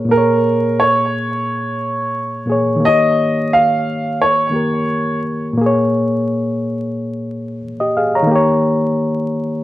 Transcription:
Already playing: reed electric piano A#2 A#3 G#4 C#5
0.05 reed electric piano A#2 A#3
0.11 reed electric piano G#4, upright piano A#4
0.17 reed electric piano C#5
0.80 upright piano C#5
2.45 reed electric piano A#2 A#3
2.49 reed electric piano G#4 C#5
2.76 reed electric piano D#3
2.80 reed electric piano A#3
2.85 reed electric piano G4, upright piano D#5
2.89 reed electric piano C#5
3.53 upright piano F5
4.21 upright piano C#5
4.49 reed electric piano D#3 A#3 G4
4.56 reed electric piano A#4
5.53 reed electric piano A#2
5.57 reed electric piano A#3 G#4
5.66 reed electric piano C#5
7.80 reed electric piano G4 D#5
7.97 reed electric piano G#4 F5
8.15 reed electric piano C#5 A#5
8.23 reed electric piano D#3
8.27 reed electric piano A#3
8.31 reed electric piano G4
8.36 reed electric piano C#5

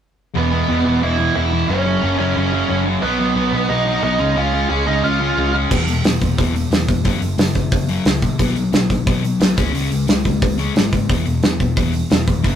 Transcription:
0.34 picked electric bass E1, distorted electric guitar E2 B2 E3, lead electric guitar B3
0.38 lead electric guitar B4
0.52 distorted electric guitar E2 B2 E3
0.68 picked electric bass E1, distorted electric guitar E2 B2 E3
0.85 picked electric bass E1, distorted electric guitar E2 B2 E3
1.02 picked electric bass E1, distorted electric guitar E2 B2 E3, lead electric guitar E4 E5
1.18 distorted electric guitar E2 B2 E3
1.35 picked electric bass E1, distorted electric guitar E2 B2 E3, lead electric guitar E4 E5
1.51 distorted electric guitar E2 B2 E3
1.69 picked electric bass F#1, distorted electric guitar F#2 C#3 F#3, lead electric guitar C#4 C#5
1.85 distorted electric guitar F#2 C#3 F#3
2.02 picked electric bass F#1, distorted electric guitar F#2 C#3 F#3
2.19 picked electric bass F#1, distorted electric guitar F#2 C#3 F#3, lead electric guitar C#4 C#5
2.35 picked electric bass F#1, distorted electric guitar F#2 C#3 F#3
2.52 distorted electric guitar F#2 C#3 F#3
2.68 picked electric bass F#1, distorted electric guitar F#2 C#3 F#3
2.86 distorted electric guitar F#2 C#3 F#3
3.02 picked electric bass B1, distorted electric guitar B2 F#3 B3, lead electric guitar B3 B4
3.19 distorted electric guitar B2 F#3 B3
3.36 picked electric bass B1, distorted electric guitar B2 F#3 B3
3.53 picked electric bass B1, distorted electric guitar B2 F#3 B3
3.69 picked electric bass B1, distorted electric guitar B2 F#3 B3, lead electric guitar D#4 D#5
3.86 distorted electric guitar B2 F#3 B3
4.02 picked electric bass B1, distorted electric guitar B2 F#3 B3, lead electric guitar D#4 D#5
4.19 picked electric bass C#2, distorted electric guitar C#3 G#3 C#4
4.36 picked electric bass C#2, distorted electric guitar C#3 G#3 C#4, lead electric guitar F4 F5
4.53 distorted electric guitar C#3 G#3 C#4
4.69 picked electric bass C#2, distorted electric guitar C#3 G#3 C#4, lead electric guitar G#4 G#5
4.86 picked electric bass C#2, distorted electric guitar C#3 G#3 C#4, lead electric guitar D#4 D#5
5.03 picked electric bass C#2, distorted electric guitar C#3 G#3 C#4, lead electric guitar F4 F5
5.20 distorted electric guitar C#3 G#3 C#4
5.37 picked electric bass C#2, distorted electric guitar C#3 G#3 C#4
5.54 distorted electric guitar C#3 G#3 C#4
5.70 picked electric bass E1, distorted electric guitar E2 B2 E3, kick, crash
5.87 picked electric bass E1, distorted electric guitar E2 B2, open hi-hat
6.04 picked electric bass E1, distorted electric guitar E2 B2, snare, open hi-hat
6.21 picked electric bass E1, distorted electric guitar E2 B2, kick, open hi-hat
6.38 picked electric bass E1, distorted electric guitar E2 B2 E3, kick, open hi-hat
6.55 distorted electric guitar E2 B2, open hi-hat
6.71 picked electric bass E1, distorted electric guitar E2 B2, snare, open hi-hat
6.88 picked electric bass F1, distorted electric guitar E2 B2, kick, open hi-hat
7.04 picked electric bass F#1, distorted electric guitar F#2 C#3 F#3, kick, open hi-hat
7.21 picked electric bass F#1, distorted electric guitar F#2 C#3, open hi-hat
7.38 picked electric bass F#1, distorted electric guitar F#2 C#3, snare, open hi-hat
7.55 picked electric bass F#1, distorted electric guitar F#2 C#3, kick, open hi-hat
7.72 picked electric bass F#1, distorted electric guitar F#2 C#3, kick, open hi-hat
7.88 distorted electric guitar F#2 C#3 F#3, open hi-hat
8.05 picked electric bass C#2, distorted electric guitar F#2 C#3, snare, open hi-hat
8.22 picked electric bass A#1, distorted electric guitar F#2 C#3, kick, open hi-hat
8.38 picked electric bass B1, distorted electric guitar B2 F#3 B3, kick, open hi-hat
8.55 picked electric bass B1, distorted electric guitar B2 F#3, open hi-hat
8.73 picked electric bass B1, distorted electric guitar B2 F#3, snare, open hi-hat
8.90 picked electric bass B1, distorted electric guitar B2 F#3, kick, open hi-hat
9.06 picked electric bass B1, distorted electric guitar B2 F#3 B3, kick, open hi-hat
9.23 distorted electric guitar B2 F#3, open hi-hat
9.40 picked electric bass B1, distorted electric guitar B2 F#3, snare, open hi-hat
9.57 picked electric bass C#2, distorted electric guitar C#3 G#3 C#4, kick, open hi-hat
9.73 picked electric bass C#2, distorted electric guitar C#3 G#3 C#4, open hi-hat
9.90 picked electric bass C#2, distorted electric guitar C#3 G#3, open hi-hat
10.07 picked electric bass C#2, distorted electric guitar C#3 G#3, snare, open hi-hat
10.24 picked electric bass C#2, distorted electric guitar C#3 G#3, kick, open hi-hat
10.42 picked electric bass C#2, distorted electric guitar C#3 G#3, kick, open hi-hat
10.58 distorted electric guitar C#3 G#3 C#4, open hi-hat
10.75 picked electric bass G#1, distorted electric guitar C#3 G#3, snare, open hi-hat
10.92 picked electric bass G#1, distorted electric guitar C#3 G#3, kick, open hi-hat
11.09 picked electric bass E1, distorted electric guitar E2 B2 E3, kick, open hi-hat
11.26 picked electric bass E1, distorted electric guitar E2 B2, open hi-hat
11.43 picked electric bass E1, distorted electric guitar E2 B2, snare, open hi-hat
11.60 picked electric bass E1, distorted electric guitar E2 B2, kick, open hi-hat
11.76 picked electric bass E1, distorted electric guitar E2 B2 E3, kick, open hi-hat
11.93 distorted electric guitar E2 B2, open hi-hat
12.10 picked electric bass E1, distorted electric guitar E2 B2, snare, open hi-hat
12.27 picked electric bass F1, distorted electric guitar E2 B2, kick, open hi-hat
12.43 picked electric bass F#1, distorted electric guitar F#2 C#3 F#3, kick, open hi-hat

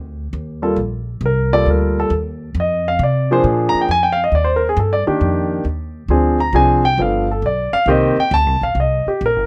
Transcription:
Already playing: upright bass D2
0.33 upright bass D#2
0.62 grand piano G3 A#3 F4 A4
0.76 upright bass A#1
1.21 upright bass C2
1.26 grand piano A#4
1.53 grand piano G3 A#3 F4 A4 D5
1.66 upright bass D2
1.70 grand piano A#4
2.00 grand piano A4
2.10 upright bass D#2
2.55 upright bass F2
2.60 grand piano D#5
2.88 grand piano F5
2.99 upright bass C3
3.03 grand piano D5
3.31 grand piano F3 A#3 D4 G#4 C5
3.44 upright bass A#2
3.69 grand piano A#5
3.74 muted upright bass stroke
3.81 grand piano G5
3.89 upright bass F2, grand piano G#5
4.03 grand piano G5
4.12 grand piano F5
4.24 grand piano D#5
4.32 upright bass D#2, grand piano D5
4.44 grand piano C5
4.56 grand piano A#4
4.69 grand piano G#4
4.77 upright bass G2, grand piano A4
4.93 grand piano D5
5.07 grand piano D#3 A#3 D4 G4, muted upright bass stroke
5.21 upright bass F2
5.65 upright bass D#2
6.08 upright bass D2, grand piano F3 C4 D4 G#4
6.40 grand piano A#5
6.53 upright bass C2, grand piano F3 C4 D4 G#4 G#5
6.85 grand piano G5
6.98 upright bass G1, grand piano F3 B3 D4 A4
7.02 grand piano F5
7.31 grand piano A4
7.42 upright bass B1, grand piano D5
7.73 grand piano F5, muted upright bass stroke
7.86 upright bass C2, grand piano D#3 A#3 C4 G4
7.90 grand piano D#5
8.17 grand piano G5, muted upright bass stroke
8.31 upright bass D2, grand piano A5
8.46 upright bass C2
8.61 upright bass A#1, grand piano F5
8.75 upright bass C2
8.80 grand piano D#5
9.06 grand piano G4, muted upright bass stroke
9.21 upright bass A#1
9.26 grand piano A#4
9.36 upright bass G1

